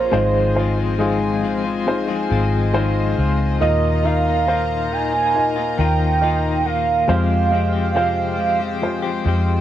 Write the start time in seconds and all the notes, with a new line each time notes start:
Already playing: A#3 C#4 F4 G#4 C5 C#5
0.12 G#1 G#2 D#3 F3 G#3 C4 D#4 F4 C5 D#5 G#5
0.55 F3 G#3 C4 D#4 F4 C5
0.77 F3 G#3 C4 F4
0.99 G#2 D#3 F3 G#3 C4 D#4 F4 G#4
1.42 F3 G#3 C4 F4
1.64 F3 G#3 C4 F4
1.87 G#3 D#4 F4 C5
2.08 F3 G#3 C4 F4
2.29 G#1 F3 G#3 C4 F4
2.73 G#2 D#3 F3 G#3 C4 D#4 F4 C5
3.17 C#2 F3 G#3 C4 F4
3.60 D#2 A#2 D#3 A#3 D#4 F4 A#4 D#5 A#5
4.04 D#3 A#3 D#4 F4 D#5 F5
4.26 A#3 D#4 F4
4.47 D#3 A#3 D#4 F4 C5
4.91 D#3 A#3 D#4 F4 G#5
5.13 A#3 D#4 F4
5.34 A#3 D#4 F4 D#5
5.56 A#3 D#4 F4
5.78 D#2 D#3 A#3 D#4 F4 G5
6.21 D#3 A#3 D#4 F4 D#5
6.65 D#3 A#3 D#4 F4 F5
7.08 F2 C3 F3 G#3 C4 F4 G4 C5 F5 G5
7.51 F3 G#3 C4 F4 G4 D#5
7.73 F3 G#3 C4 G4
7.94 F2 C3 F3 G#3 C4 F4 G4 C5
8.38 F3 G#3 C4 G4
8.60 F3 G#3 C4 G4
8.82 G#3 F4 G4 C5
9.03 F3 G#3 C4 G4
9.25 F2 F3 G#3 C4 G4